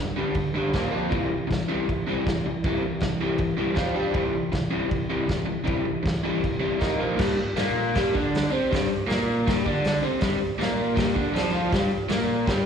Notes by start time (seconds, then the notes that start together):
0.00 G2 D3
0.17 G2 D3 G3
0.35 G2 D3, kick, crash
0.54 G2 D3 G3
0.73 A#2 F3 A#3, kick, snare, crash
0.92 F3 C4 F4
1.10 C3 E3 G3, kick, crash
1.30 C3 E3
1.47 C3 E3, kick, crash
1.52 snare
1.68 C3 E3 G3
1.88 C3 E3, kick, crash
2.07 C3 E3 G3
2.27 C3 E3, kick, snare, crash
2.46 C3 E3
2.64 C3 E3 G3, kick, crash
2.83 C3 E3
3.00 C3 E3, kick, snare, crash
3.21 C3 E3 G3
3.38 C3 E3, kick, crash
3.57 C3 E3 G3
3.75 F3 C4 F4, kick, snare, crash
3.94 G3 D4 G4
4.13 C3 E3 G3, kick, crash
4.32 C3 E3
4.52 C3 E3, kick, snare, crash
4.71 C3 E3 G3
4.89 C3 E3, kick, crash
5.09 C3 E3 G3
5.28 C3 E3, kick, snare, crash
5.46 C3 E3
5.64 C3 E3 G3, kick, crash
5.85 C3 E3
6.03 C3 E3, kick, crash
6.07 snare
6.24 C3 E3 G3
6.42 C3 E3, kick, crash
6.60 C3 E3 G3
6.80 D#3 A#3 D#4, kick, snare, crash
6.99 A#2 F3 A#3
7.17 G2 G3, kick, snare, crash
7.37 G2
7.56 A#2 A#3, snare, open hi-hat
7.94 G2 G3, kick, snare, open hi-hat
8.14 D3 D4, kick
8.35 snare, open hi-hat
8.50 C3 C4
8.71 G2 G3, kick, open hi-hat
8.75 snare
8.89 G2
9.07 A#2 A#3, open hi-hat
9.11 snare
9.46 G2 G3, kick, snare, open hi-hat
9.65 D3 D4, kick
9.85 snare, open hi-hat
10.02 C3 C4
10.20 G2 G3, kick, snare, open hi-hat
10.39 G2
10.59 A#2 A#3, snare, open hi-hat
10.95 G2 G3, kick, snare, open hi-hat
11.14 D3 D4, kick
11.33 F2 F3, open hi-hat
11.37 snare
11.51 F3 F4
11.70 G2 G3, kick, snare, open hi-hat
11.91 G2
12.09 A#2 A#3, snare, open hi-hat
12.46 G2 G3, kick, snare, open hi-hat